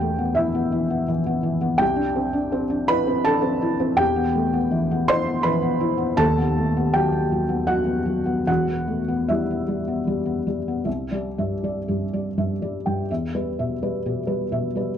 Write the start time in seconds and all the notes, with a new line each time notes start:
Already playing: E1 E2 B3 G4 G5
0.01 A3
0.18 B3
0.35 E3 E4 E5
0.55 B3
0.72 E3
0.90 B3
1.08 E3
1.26 B3
1.43 E3
1.61 B3
1.78 C2 G4 G5
1.96 D4
2.16 C4
2.33 D4
2.52 C4
2.70 D4
2.88 E4 B4 B5
3.07 C4
3.25 D4 A4 A5
3.42 C4
3.62 E4
3.80 C4
3.96 E1 E2 G4 G5
4.16 B3
4.35 A3
4.53 B3
4.71 E3
4.91 B3
5.08 E4 C5 C6
5.28 B3
5.43 E3 B4 B5
5.62 B3
5.80 E4
5.98 B3
6.17 D#1 D#2 A4 A5
6.38 B3
6.58 A3
6.77 B3
6.94 F#3 G4 G5
7.13 B3
7.32 F#3
7.49 B3
7.67 F#3 F#4 F#5
7.86 B3
8.06 F#3
8.26 B3
8.47 E1 E2 F#4 F#5
8.68 B3
8.88 A3
9.08 B3
9.29 G3 E4 E5
9.50 B3
9.68 G3
9.87 B3
10.07 G3
10.26 B3
10.47 G3
10.68 B3
10.85 C2 E5
11.11 G3 D5
11.38 G2 E5
11.64 G3 D5
11.88 G2 G4
12.13 G3 D5
12.37 G2 E5
12.62 G3 D5
12.86 G2 G5
13.11 E2 E5
13.35 G3 B4
13.59 B2 E5
13.82 G3 B4
14.06 B2 G4
14.27 G3 B4
14.52 B2 E5
14.75 G3 B4